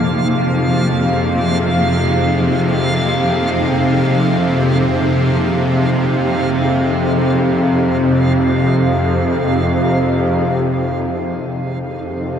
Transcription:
Already playing: F2 C3 F3 A#3 D#4 G#4 F5
10.93 F2 C3 F3

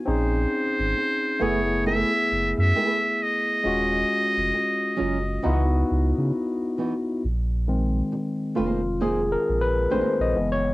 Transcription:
0.05 A#1 C4 C#4 D#4 G#4 C5
0.79 G#1
0.96 muted nylon-string guitar stroke
1.40 F#1 A3 B3 E4 G#4 B4 C#5
1.85 A3 E4 G#4 B4 E5
2.31 F#1
2.58 F#2 E5
2.75 A3 E4 G#4 B4
3.22 D#5
3.64 D#1 G#3 C#4 F4 F#4
4.37 F1
4.53 muted nylon-string guitar stroke
4.96 F#1 F#3 C#4 F4 G#4
5.42 C#2 E3 B3 D#4 E4 F4 F#4
5.53 F#4
5.91 C#2
6.18 C#3
6.78 E3 B3 D#4 F#4
7.24 A#1
7.68 D#3 G#3 C4
8.12 muted nylon-string guitar stroke
8.55 F1 A#3 D#4 F4 G#4 C5
9.00 A#3 D#4 G#4 C5
9.32 A#4
9.49 A#1
9.61 B4
9.90 A#1 D#3 G#3 A#3 C4 D#4 G#4 C5
10.20 A#1 D#5
10.36 F#1 E3 G#3 B3
10.52 C#5

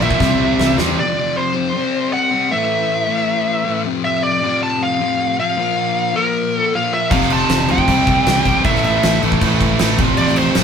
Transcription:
Already playing: A#2 F3 A#3 F4 C5
0.00 A#1 F3 A#3 E5, crash
0.04 A#2
0.11 kick
0.19 C2 C3 G3 C4 G4 D5, kick, snare
0.58 C2, snare
0.77 E2 C3 G3 C4, snare
0.96 F2 C3 F3 C4 G4 D5
1.01 F3
1.37 C5
1.53 F2 C3 F3
1.73 C3 G3 C4 D5
2.13 F#5
2.31 G3 C4
2.35 C3
2.50 A2 E3 A3 E4 B4 E5
3.07 E3 A3
3.11 A2
3.65 A2 E3 A3
3.84 F2 A2 C3 F3 C4 G4
3.89 F3
4.05 E5
4.23 D5
4.42 F2 C3 F3
4.63 A5
4.83 F5
5.00 F2 C3 F3
5.40 F5
5.56 A#2 F3 A#3 F4 C5
6.14 F3 A#3 A#4
6.18 A#2
6.59 A4
6.72 A#2 F3 F5
6.76 A#3
6.94 E5
7.10 F1 F2 C3 F3 C4 G4 F5, kick, crash
7.21 snare
7.30 A5, crash
7.49 F1, snare, crash
7.68 D2 F2 C3 F3 G5, crash
7.78 kick
7.87 C2 C3 G3 C4 D5, kick, crash
7.92 C4
8.07 kick, crash
8.27 C2, snare, crash
8.45 B1 C3 G3 C4, kick, crash
8.65 A1 A2 E3 A3 E4 B4 E5, kick, crash
8.75 snare
8.84 E5, crash
9.03 A1, snare, crash
9.22 A1 A2 E3 A3, crash
9.32 kick
9.41 A1 A2 E3 A3, kick, crash
9.61 kick, crash
9.79 A1 A2 E3, snare, crash
9.83 A3
9.99 A1 F2 C3 F3 C4 G4, kick, crash
10.17 A1 D5, crash
10.27 snare
10.36 C5, crash
10.55 A1 F2, snare, crash
10.59 C3 F3

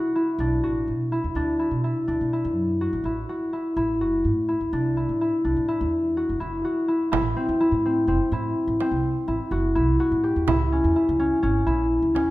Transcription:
Already playing: D4 E4 F#4
0.15 E4
0.39 B1 D4
0.63 A1 F#4
0.88 B2
1.12 E4
1.24 E2
1.35 D2 D4
1.59 E4
1.71 B2
1.84 E4
2.08 D2 D4
2.21 B2
2.33 E4
2.45 F#2
2.81 F#4
2.93 A1
3.04 A1 E4
3.29 F#4
3.53 E4
3.76 A1 E4
4.00 F#1 F#4
4.25 A2
4.48 E4
4.61 D2
4.73 C2 D4
4.97 E4
5.09 A2
5.21 E4
5.44 C2 D4
5.57 A2
5.68 E4
5.81 E2
6.17 F#4
6.29 F#1
6.40 F#1 E4
6.65 F#4
6.88 E4
7.12 A1 E4, frame drum
7.36 C4
7.49 E2
7.60 E4, frame drum
7.72 A2
7.86 C4
8.07 F#1 C4
8.32 A2 E4, frame drum
8.67 A1
8.80 C4, frame drum
8.91 C2
9.28 A1 E4, frame drum
9.51 F#1 F#4
9.75 C2 E4
10.00 F#4, frame drum
10.12 A2
10.24 G4
10.36 E2
10.48 C#2 E4, frame drum
10.72 C#4
10.84 E2
10.96 E4, frame drum
11.09 C#2
11.19 C#4
11.43 G#1 C#4
11.66 A#1 E4, frame drum
12.02 C#2
12.15 C#4, frame drum
12.26 E2

